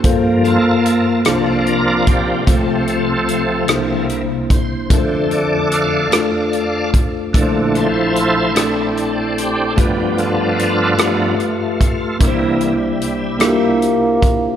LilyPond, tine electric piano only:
<<
  \new Staff \with { instrumentName = "Tine electric piano" } { \time 6/8 \key f \major \tempo 4. = 49 <bes f' a' c''>4 r8 <bes d' f' c''>4 r8 | <a c' f' c''>4 r8 <bes d' e' c''>4 r8 | <a d' f' bes' c''>4 r8 <a d' f' a'>4 r8 | <a d' e' b' c''>4 r8 <a d' e' a'>4 r8 |
<a f' g' b'>4 r8 <a f' g' b'>4 r8 | <bes d' e' bes' c''>4 r8 <bes d' e' f' g'>4 r8 | }
  \new Staff \with { instrumentName = "Tine electric piano" } { \clef bass \time 6/8 \key f \major g,4. <c, c>4. | <c, c>4. <c, c>4. | f,2. | <bes,, bes,>2. |
g,2. | <c, c>2. | }
>>